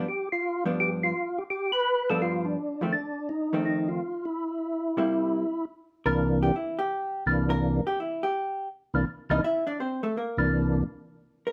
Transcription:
X:1
M:4/4
L:1/8
Q:"Swing" 1/4=167
K:Cmix
V:1 name="Hollow-body jazz guitar"
z3 [G,,F,=B,D]3 z2 | z3 [G,,F,=B,D]3 z [F,,_E,A,C] | z3 [F,,_E,A,C]3 z2 | z3 [C,G,B,E]3 z2 |
z B2 G E G3 | z B2 G E G3 | z3 [_E_e] [=E=e] [Dd] [Cc] [A,A] | [B,B]2 z4 z B |]
V:2 name="Tonewheel organ"
G F2 z G F2 G | G =B2 A F D2 F | D2 _E2 E F2 =E- | E6- E z |
z [C,,C,E,B,D]3 z4 | [C,,C,E,B,D]3 z4 z | z [C,,C,E,B,D] z [C,,C,E,B,D] z4 | z [C,,C,E,B,D]3 z4 |]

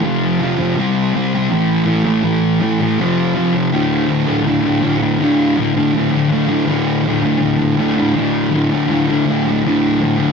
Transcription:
X:1
M:4/4
L:1/8
Q:1/4=162
K:Dm
V:1 name="Distorted electric guitar" clef=bass
[F,,C,F,]2 [F,,C,F,] [F,,C,F,] [C,G,C]2 [C,G,C] [C,G,C] | [A,,E,A,]2 [A,,E,A,] [A,,E,A,] [A,,E,A,]2 [A,,E,A,] [A,,E,A,] | [F,,C,F,]2 [F,,C,F,] [F,,C,F,] [D,,A,,D,]2 [D,,A,,D,] [D,,A,,D,] | [D,,A,,D,] [A,,D,] [D,,A,,D,] [A,,D,] [D,,A,,D,]2 [D,,A,,D,] [A,,D,] |
[D,,A,,D,] [A,,D,] [D,,A,,D,] [A,,D,] [D,,A,,D,]2 [D,,A,,D,] [A,,D,] | [D,,A,,D,] [A,,D,] [D,,A,,D,] [A,,D,] [D,,A,,D,]2 [D,,A,,D,] [A,,D,] | [D,,A,,D,] [A,,D,] [D,,A,,D,] [A,,D,] [D,,A,,D,]2 [D,,A,,D,] [A,,D,] |]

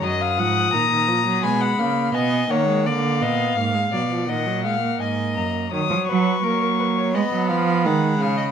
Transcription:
X:1
M:4/4
L:1/16
Q:1/4=84
K:D#phr
V:1 name="Violin"
d'8 b4 g2 f2 | ^e8 f4 g2 a2 | [K:Ebm] e'2 d'6 c'8 |]
V:2 name="Violin"
d ^e f2 a4 g f e2 d2 c2 | =d2 ^d2 ^e2 =d2 ^d2 e2 d4 | [K:Ebm] d2 c2 B B c d e2 f2 g2 f e |]
V:3 name="Viola" clef=bass
F,2 ^E,2 D, D, E, F, G,2 A,2 B,2 A, G, | A,2 B,2 A, G, F, ^E, D, F, G, A,4- A, | [K:Ebm] G,4 G,4 C4 A,4 |]
V:4 name="Cello" clef=bass
F,,2 G,,2 A,,4 B,,2 C,2 B,,2 D,2 | =D,2 A,,2 G,,2 B,,2 A,,4 G,,2 F,,2 | [K:Ebm] E, F, G,2 B,4 A, G, F,2 E,2 D,2 |]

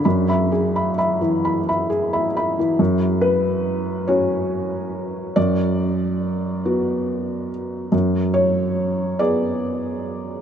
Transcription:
X:1
M:6/8
L:1/16
Q:3/8=47
K:Emix
V:1 name="Felt piano"
b [eb] G [eb] [eb] E, b [eb] G [eb] [eb] E, | z2 B4 c6 | d8- d2 z2 | z2 c4 d6 |]
V:2 name="Felt piano"
F,,12 | F,,6 [CF]6 | F,,6 [B,F]6 | F,,6 [B,G]6 |]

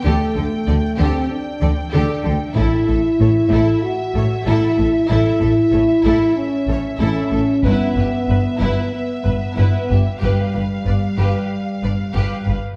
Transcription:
X:1
M:4/4
L:1/8
Q:1/4=94
K:Ador
V:1 name="Violin section"
g8 | e8- | e8 | e8 |
=f6- f z |]
V:2 name="Viola section"
A A A A z A A A | A A A A z A A A | A A A A z A A A | B B B B z B B B |
B B B B z B B B |]
V:3 name="Violin section"
G A d G z d G A | E A ^c E z c E A | E A ^c E z c E A | E G B E z B E G |
G B d G z d G B |]
V:4 name="French horn section"
A,3 C D2 D2 | E4 F2 E2 | E4 ^C2 C2 | B,4 B,4 |
G,6- G, z |]
V:5 name="Cello section" clef=bass
D, D, D, D, z D, D, D, | A,, A,, A,, A,, z A,, A,, A,, | A,, A,, A,, A,, z A,, A,, A,, | G,, G,, G,, G,, z G,, G,, G,, |
G,, G,, G,, G,, z G,, G,, G,, |]
V:6 name="Double bass section" clef=bass
D,, D,, D,, D,, z D,, D,, D,, | A,,, A,,, A,,, A,,, z A,,, A,,, A,,, | A,,, A,,, A,,, A,,, z A,,, A,,, A,,, | G,,, G,,, G,,, G,,, z G,,, G,,, G,,, |
G,,, G,,, G,,, G,,, z G,,, G,,, G,,, |]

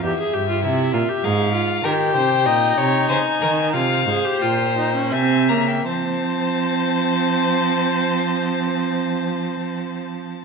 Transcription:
X:1
M:3/4
L:1/16
Q:1/4=85
K:Cphr
V:1 name="Violin"
=e8 f4 | g8 a4 | f4 g4 a2 b g | =a12- |
=a12 |]
V:2 name="Violin"
z12 | B2 c2 e2 d2 c2 B2 | c8 =e4 | c12- |
c12 |]
V:3 name="Viola"
G A G F =E2 F G A2 F2 | G4 E8 | F2 A G F2 E D C2 B,2 | C12- |
C12 |]
V:4 name="Cello" clef=bass
=E,,2 G,,2 C,2 B,,2 A,,4 | E,2 C,2 B,,2 C,2 D,2 E,2 | C,2 A,,2 B,,4 C,2 D,2 | F,12- |
F,12 |]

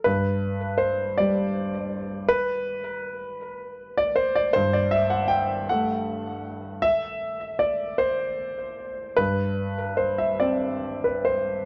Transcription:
X:1
M:6/8
L:1/16
Q:3/8=53
K:Ador
V:1 name="Grand piano"
B4 c2 d6 | B8- B d c d | c d e f g2 f6 | e4 d2 c6 |
B4 c e d3 B c2 |]
V:2 name="Grand piano" clef=bass
G,,6 G,6- | G,12 | G,,6 A,6- | A,12 |
G,,6 C6 |]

